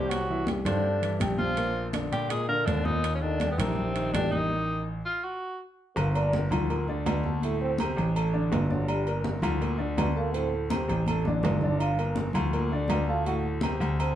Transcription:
Already playing: grand piano C2 C3 C4 C5, trombone G3, tenor saxophone G4
0.10 trombone F#3, tenor saxophone F#4, high conga, high timbale
0.29 grand piano E3 E4 E5, high conga
0.47 grand piano G3 G4 G5, high conga, high timbale
0.65 grand piano G2 C4 C5 C6, trombone D3, tenor saxophone D4, low conga, high timbale
0.83 high conga
1.02 grand piano E3 E4 E5, high conga, high timbale
1.20 grand piano A#1 G3 G4 G5, high conga, high timbale
1.38 trombone F3, tenor saxophone F4, high conga
1.57 grand piano A#2 A#3 A#4, high conga, high timbale
1.75 high conga
1.93 grand piano D3 D4 D5, high conga, high timbale
2.12 grand piano A#2, trombone G3, tenor saxophone G4, high timbale
2.29 grand piano A#2 A#3 A#4, trombone G#3, tenor saxophone G#4, high conga, high timbale
2.48 grand piano D3 D4 D5, trombone A#3, tenor saxophone A#4, high conga
2.66 grand piano D#2, trombone D3, tenor saxophone D4, high conga, high timbale, low timbale
2.85 grand piano A#2 A#3 A#4, trombone D#3, tenor saxophone D#4, high conga
3.04 high conga, high timbale
3.15 trombone C#3, tenor saxophone C#4
3.21 trombone D3, grand piano D#3 D#4 D#5, tenor saxophone D4, high conga
3.40 grand piano G3 G4 G5, high conga, high timbale
3.51 trombone B2, tenor saxophone B3
3.58 grand piano A#1 A#3 A#4 A#5, trombone C3, tenor saxophone C4, low conga, high timbale
3.76 high conga, low conga
3.95 grand piano D#3 D#4 D#5, high conga, high timbale
4.13 grand piano A1 G3 G4 G5, trombone D3, tenor saxophone D4, high conga, high timbale, low timbale
4.30 trombone D#3, tenor saxophone D#4, high conga
5.05 tenor saxophone F4
5.24 tenor saxophone F#4
5.96 grand piano G1, trombone A#3, high conga, low agogo
6.15 grand piano A#3 A#4 A#5, trombone D4, high conga, low agogo
6.33 high conga, low timbale
6.51 grand piano D2 F3 F4 F5, low conga, low agogo
6.69 grand piano A#2 A#3 A#4, high conga, low agogo
6.88 grand piano D3 D4 D5, high conga
7.06 grand piano D2, high conga, low timbale, low agogo
7.24 grand piano A3 A4 A5, high conga
7.42 grand piano A2 A3 A4, trombone A3, high conga, low agogo
7.60 trombone C4, high conga
7.78 grand piano C3 C4 C5, high conga, low timbale, low agogo
7.97 grand piano A1, low agogo
8.15 grand piano A3 A4 A5, high conga, low agogo
8.33 grand piano D3 D4 D5, high conga
8.52 grand piano G1, high conga, low timbale, low agogo
8.70 grand piano D3 D4 D5, trombone F#3, high conga
8.88 trombone G3, high conga, low agogo
9.06 grand piano A#3 A#4 A#5, high conga, low agogo
9.24 high conga, low timbale
9.42 grand piano D2 F3 F4 F5, low conga, low agogo
9.61 grand piano A#2 A#3 A#4, high conga, low agogo
9.78 grand piano D3 D4 D5, high conga
9.97 grand piano D2, high conga, low timbale, low agogo
10.16 grand piano A3 A4 A5, trombone A#3
10.34 grand piano A2 A3 A4, trombone C4, high conga, low agogo
10.53 high conga
10.70 grand piano C3 C4 C5, high conga, low timbale, low agogo
10.88 grand piano A1, low agogo
11.07 grand piano A3 A4 A5, high conga, low agogo
11.25 grand piano A1 D3 D4 D5, high conga
11.43 grand piano G1, low conga, low timbale, low agogo
11.61 grand piano D3 D4 D5, trombone D4, low conga
11.80 trombone F4, high conga, low agogo
11.98 grand piano A#3 A#4 A#5, high conga, low agogo
12.16 high conga, low timbale
12.33 grand piano D2 F3 F4 F5, low conga, low agogo
12.51 grand piano A#2 A#3 A#4, high conga, low agogo
12.70 grand piano D3 D4 D5, high conga
12.88 grand piano D2, high conga, low timbale, low agogo
13.08 grand piano A3 A4 A5, trombone F4
13.25 grand piano A2 A3 A4, trombone F#4, high conga, low agogo
13.43 high conga
13.61 grand piano C3 C4 C5, high conga, low timbale, low agogo
13.80 grand piano D2, low agogo
13.99 grand piano A3 A4 A5, trombone C4, high conga, low agogo

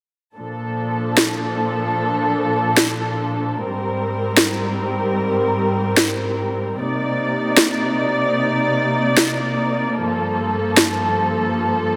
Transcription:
0.37 string section A#2 F3 D4 A4
1.17 snare
2.77 snare
3.57 string section G#2 G3 C4 A#4
4.37 snare
5.97 snare
6.77 string section C3 A#3 D#4 D5
7.57 snare
9.17 snare
9.97 string section G2 F3 A4
10.77 snare

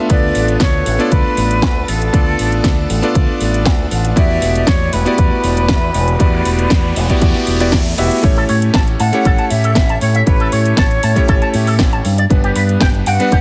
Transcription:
0.09 fingered electric bass D2, string machine A3 A4, electric grand piano B3 D4 F4 A4 B4, flute D5, kick, closed hi-hat
0.35 fingered electric bass A1, open hi-hat
0.48 closed hi-hat
0.60 fingered electric bass D2, flute C#5, kick, snare, closed hi-hat
0.86 fingered electric bass A1, open hi-hat
0.99 electric grand piano B3 D4 F4 A4 D5, closed hi-hat
1.12 fingered electric bass D2, flute B4, kick, closed hi-hat
1.37 fingered electric bass A1, open hi-hat
1.51 closed hi-hat
1.62 fingered electric bass D2, kick, snare, closed hi-hat
1.88 fingered electric bass A1, flute A4, open hi-hat
2.02 closed hi-hat
2.13 fingered electric bass D2, electric grand piano B3 D4 F4 A4 D5, kick, closed hi-hat
2.39 fingered electric bass A1, open hi-hat
2.52 closed hi-hat
2.64 fingered electric bass D2, kick, snare, closed hi-hat
2.90 fingered electric bass A1, open hi-hat
3.02 electric grand piano B3 D4 F4 A4 D5, closed hi-hat
3.15 fingered electric bass D2, kick, closed hi-hat
3.41 fingered electric bass A1, open hi-hat
3.54 closed hi-hat
3.65 fingered electric bass D2, kick, snare, closed hi-hat
3.91 fingered electric bass A1, open hi-hat
4.05 closed hi-hat
4.16 fingered electric bass E2, electric grand piano B3 E4 F#4 G4 D5, flute E5, kick, closed hi-hat, riser
4.42 fingered electric bass E1, open hi-hat
4.55 closed hi-hat
4.67 fingered electric bass E2, flute C#5, kick, snare, closed hi-hat
4.93 fingered electric bass E1, flute B4, open hi-hat
5.05 electric grand piano B3 E4 F#4 G4 D5, closed hi-hat
5.18 fingered electric bass E2, kick, closed hi-hat
5.44 fingered electric bass E1, open hi-hat
5.57 closed hi-hat
5.68 fingered electric bass E2, kick, snare, closed hi-hat
5.94 fingered electric bass E1, open hi-hat
6.08 closed hi-hat
6.19 fingered electric bass E2, electric grand piano B3 E4 F#4 G4 D5, kick, closed hi-hat
6.45 fingered electric bass E1, open hi-hat
6.59 closed hi-hat
6.70 fingered electric bass E2, kick, snare, closed hi-hat
6.96 fingered electric bass E1, open hi-hat
7.10 electric grand piano B3 E4 F#4 G4 D5, kick, closed hi-hat
7.22 fingered electric bass E2, kick, closed hi-hat
7.34 snare
7.47 fingered electric bass E1, open hi-hat
7.60 electric grand piano B3 E4 F#4 G4 D5, closed hi-hat
7.72 fingered electric bass E2, kick, snare, closed hi-hat
7.98 fingered electric bass E1, electric grand piano B3 E4 F#4 G4 E5, open hi-hat
8.11 closed hi-hat
8.23 fingered electric bass A1, electric grand piano A3 C#4 E4 G4 C#5, kick, closed hi-hat
8.37 clean electric guitar A4, closed hi-hat
8.49 fingered electric bass A2, clean electric guitar C#5, open hi-hat
8.62 closed hi-hat
8.74 fingered electric bass A1, clean electric guitar A5, kick, snare, closed hi-hat
8.88 closed hi-hat
9.00 fingered electric bass A2, flute F#5, clean electric guitar A5, open hi-hat
9.12 electric grand piano A3 C#4 E4 G4 C#5, closed hi-hat
9.25 fingered electric bass A1, clean electric guitar A4, kick, closed hi-hat
9.38 clean electric guitar A5, closed hi-hat
9.50 fingered electric bass A2, flute E5, open hi-hat
9.64 clean electric guitar A4, closed hi-hat
9.75 fingered electric bass A1, kick, snare, closed hi-hat
9.89 clean electric guitar A5, closed hi-hat
10.01 fingered electric bass A2, flute C#5, open hi-hat
10.15 clean electric guitar E5, closed hi-hat
10.26 fingered electric bass A1, electric grand piano A3 C#4 E4 G4 C#5, flute B4, kick, closed hi-hat
10.40 clean electric guitar A4, closed hi-hat
10.52 fingered electric bass A2, flute C#5, clean electric guitar C#5, open hi-hat
10.65 closed hi-hat
10.77 fingered electric bass A1, clean electric guitar A5, kick, snare, closed hi-hat
10.91 closed hi-hat
11.03 fingered electric bass A2, clean electric guitar A5, open hi-hat
11.16 electric grand piano A3 C#4 E4 G4 C#5, kick, closed hi-hat
11.28 fingered electric bass A1, clean electric guitar A4, kick, closed hi-hat
11.42 clean electric guitar A5, closed hi-hat
11.54 fingered electric bass A2, open hi-hat
11.67 clean electric guitar A4, open hi-hat
11.79 fingered electric bass A1, kick, snare, closed hi-hat
11.93 clean electric guitar A5, closed hi-hat
12.05 fingered electric bass G2, open hi-hat
12.18 clean electric guitar D5, closed hi-hat
12.30 fingered electric bass G1, electric grand piano G3 B3 D4 B4, kick, closed hi-hat
12.44 clean electric guitar G4, closed hi-hat
12.55 fingered electric bass G2, clean electric guitar B4, open hi-hat
12.69 closed hi-hat
12.80 fingered electric bass G1, clean electric guitar G5, kick, snare, closed hi-hat
12.95 closed hi-hat
13.06 fingered electric bass G2, flute F#5, clean electric guitar G5, open hi-hat
13.19 electric grand piano G3 B3 D4 B4, closed hi-hat
13.32 fingered electric bass G1, clean electric guitar G4, kick, closed hi-hat

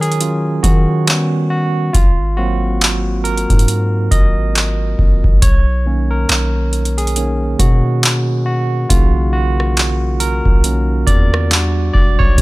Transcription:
Already playing: 808-style bass D#3, tine electric piano F#3 C#4 F4 A#4 C#5
0.01 tine electric piano G#4, closed hi-hat
0.12 closed hi-hat
0.20 tine electric piano F#3 C#4 F4, closed hi-hat
0.63 808-style bass D#3, tine electric piano F#4, kick, closed hi-hat
1.07 tine electric piano G3 B3 C#4, clap, closed hi-hat
1.50 tine electric piano F#4
1.93 808-style bass G#1, tine electric piano F4, kick, closed hi-hat
2.37 tine electric piano F#3 A#3 C4 F#4
2.81 clap, closed hi-hat
3.24 tine electric piano A#4, closed hi-hat
3.38 closed hi-hat
3.50 808-style bass G#2, kick, closed hi-hat
3.59 closed hi-hat
3.68 closed hi-hat
4.11 808-style bass G#1, tine electric piano D#5, kick, closed hi-hat
4.55 clap, closed hi-hat
4.99 808-style bass G#1, kick
5.24 808-style bass G#1, kick
5.42 808-style bass B1, tine electric piano C#5, kick, closed hi-hat
5.86 tine electric piano D#3 A#3 C#4
6.11 tine electric piano A#4
6.29 808-style bass B1, clap, closed hi-hat
6.73 closed hi-hat
6.85 closed hi-hat
6.98 tine electric piano G#4, closed hi-hat
7.07 closed hi-hat
7.16 tine electric piano D#3 A#3 C#4, closed hi-hat
7.59 808-style bass B2, tine electric piano F#4, kick, closed hi-hat
8.03 clap, closed hi-hat
8.46 tine electric piano F#4
8.89 808-style bass B1, tine electric piano C#3 D#3 A#3 F4, kick, closed hi-hat
9.33 tine electric piano F#4
9.60 cross-stick
9.77 clap, closed hi-hat
10.20 tine electric piano A#4, closed hi-hat
10.46 808-style bass B1, kick
10.64 tine electric piano D#3 A#3 C#4, closed hi-hat
11.07 808-style bass E2, tine electric piano D5, kick, closed hi-hat
11.34 cross-stick
11.51 tine electric piano G3 D4 F#4, clap, closed hi-hat
11.93 808-style bass E1, tine electric piano D5, kick
12.19 808-style bass B1, tine electric piano C#5, kick
12.38 808-style bass D#2, tine electric piano F#3 C#4, kick, closed hi-hat

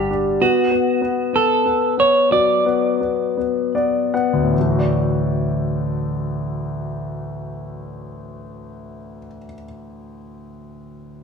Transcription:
Already playing: fingered electric bass G1, grand piano D3 G3 D4, clean electric guitar G4
0.11 grand piano D4
0.41 grand piano B3, clean electric guitar F#4
0.71 grand piano B3
1.02 grand piano B3
1.33 grand piano B3, clean electric guitar A4
1.66 grand piano B3
1.98 grand piano B3, clean electric guitar C#5
2.32 grand piano F#3, clean electric guitar D5
2.66 grand piano B3
3.01 grand piano B3
3.37 grand piano B3
3.75 grand piano B3 D5
4.14 grand piano B3 F#5
4.33 grand piano D2
4.43 grand piano A2
4.52 grand piano E3
4.60 grand piano A3
4.69 grand piano F#4
4.79 grand piano D5

